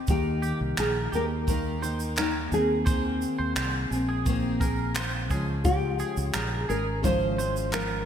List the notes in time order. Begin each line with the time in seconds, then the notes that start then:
0.07 D#2 D#3 A#3 D#4 G4, kick, shaker
0.42 G4, shaker
0.61 C2
0.77 A#1 G#4 A#4, finger snap, clap, shaker
1.12 D#2 A#3 D#4 G4 A#4, shaker
1.47 D#3 A#3 D#4 G4 A#4, kick, shaker
1.81 A#3 D#4 G4 C5, shaker
2.00 shaker
2.17 D#3 A#3 D#4 G4 A#4, finger snap, clap, shaker
2.50 D#2 A#3 C4 G#4, shaker
2.86 D#3 A#3 C4 G#4 C5, kick, shaker
3.22 shaker
3.39 D#2 C5
3.56 C2 C5, finger snap, clap, shaker
3.90 A#1 A#3 C4 G#4, shaker
4.09 G#4
4.25 D#3 A#3 C4 G#4, kick, shaker
4.60 A#3 C4 G#4 A#4, kick, shaker
4.94 D#3 A#3 C4 G#4 C5, finger snap, clap, shaker
5.30 C#2 C#3 F3 G#3 C#4 G#4, kick, shaker
5.64 G#3 C#4 F4 G4 C#5, kick, shaker
5.99 G#4, shaker
6.17 C#2, shaker
6.34 A#1 G#4 A#4, finger snap, clap, shaker
6.68 G#1 G#3 C#4 G#4 A#4, shaker
7.02 C#3 F3 G#3 C#4 E4 G#4 C5 F5, kick, shaker
7.10 F4
7.37 G#3 C#4 G#4 C5, shaker
7.56 shaker
7.70 F3 G#3 C#4 G#4 A#4, finger snap, clap, shaker